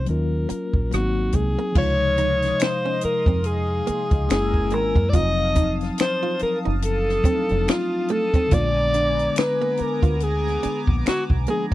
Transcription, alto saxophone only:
0.09 0.88 A#4 medium
0.93 1.37 F#4 medium
1.35 1.76 G#4 medium
1.78 2.64 C#5 loud
2.63 3.04 C5 loud
3.04 3.47 A#4 loud
3.46 4.30 G#4 medium
4.31 4.75 G#4 loud
4.73 5.11 A#4 loud
5.09 5.17 D5 medium
5.15 5.74 D#5 loud
6.01 6.39 C5 loud
6.42 6.58 A#4 medium
6.84 7.71 A4 loud
7.69 8.13 F4 loud
8.12 8.55 A4 loud
8.54 9.37 D5 loud
9.38 9.83 B4 loud
9.81 10.25 A#4 medium
10.23 10.82 G#4 medium
11.08 11.24 F#4 medium
11.50 11.66 G#4 medium

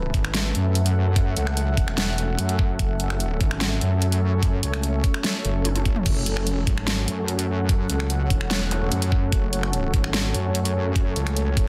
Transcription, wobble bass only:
0.00 0.12 F#1 loud
0.14 0.53 G#1 loud
0.55 1.35 F#2 loud
1.37 1.76 C#2 loud
1.77 2.37 E1 loud
2.39 2.78 F#2 loud
2.79 3.39 F#1 loud
3.41 3.80 G#1 loud
3.81 4.61 F#2 medium
4.63 5.02 C#2 loud
5.45 6.04 F#1 loud
6.06 6.48 F#1 loud
6.48 6.66 F1 loud
6.67 7.06 G#1 loud
7.08 7.88 F#2 loud
7.90 8.29 C#2 loud
8.30 8.90 E1 loud
8.92 9.31 F#2 loud
9.32 9.92 F#1 loud
9.94 10.33 G#1 loud
10.34 11.14 F#2 medium
11.16 11.55 C#2 loud
11.57 11.68 F#1 loud

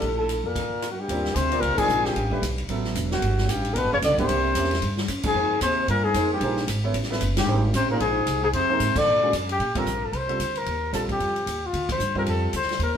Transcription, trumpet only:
0.00 0.18 A4 medium
0.19 0.48 A4 medium
0.46 0.91 A#4 medium
0.91 1.01 F#4 medium
0.99 1.37 G4 medium
1.36 1.62 C5 medium
1.61 1.80 A#4 medium
1.78 2.07 G#4 medium
2.05 2.42 G4 medium
3.13 3.51 F#4 medium
3.50 3.75 G4 medium
3.74 3.79 A#4 medium
3.74 3.92 B4 loud
3.94 3.98 C#5 loud
4.04 4.18 D5 loud
4.20 4.95 C5 medium
5.26 5.60 G#4 medium
5.63 5.87 C5 medium
5.90 6.06 A#4 medium
6.04 6.31 G#4 medium
6.33 6.67 G4 medium
7.38 7.62 G4 medium
7.76 7.89 C5 medium
7.91 8.00 A#4 medium
8.01 8.40 G#4 medium
8.44 8.49 G#4 medium
8.55 8.99 C5 loud
8.98 9.34 D5 loud
9.52 9.80 G4 medium
9.78 10.06 A#4 medium
10.05 10.18 A4 medium
10.16 10.59 C5 medium
10.58 10.94 A#4 medium
10.94 11.01 A4 medium
11.12 11.68 G4 medium
11.66 11.91 F4 medium
11.92 12.15 C5 medium
12.19 12.23 A#4 medium
12.29 12.53 A4 medium
12.56 12.80 C5 medium
12.83 12.97 A#4 medium

